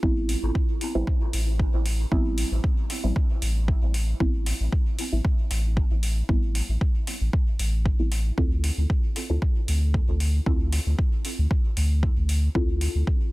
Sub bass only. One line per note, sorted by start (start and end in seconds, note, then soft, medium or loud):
0.03 0.36 A1 medium
0.43 0.51 A1 medium
0.95 1.03 A1 medium
1.33 1.66 A1 medium
1.73 2.05 A1 medium
2.12 2.44 A1 loud
2.52 2.60 A1 medium
3.04 3.12 A1 medium
3.42 3.75 A1 medium
3.82 4.14 A1 medium
4.20 4.53 A1 medium
4.60 4.68 A1 medium
5.12 5.21 A1 medium
5.51 5.83 A1 medium
5.91 6.23 A1 medium
6.29 6.62 A1 loud
6.69 6.77 A1 medium
7.21 7.29 A1 medium
7.59 7.92 A1 medium
7.99 8.31 A1 medium
8.38 8.70 D2 loud
8.78 8.86 D2 medium
9.30 9.38 D2 medium
9.68 10.01 D2 medium
10.08 10.40 D2 medium
10.46 10.79 D2 loud
10.86 10.95 D2 medium
11.39 11.47 D2 medium
11.77 12.10 D2 medium
12.17 12.49 D2 medium
12.55 12.88 D2 loud
12.95 13.03 D2 medium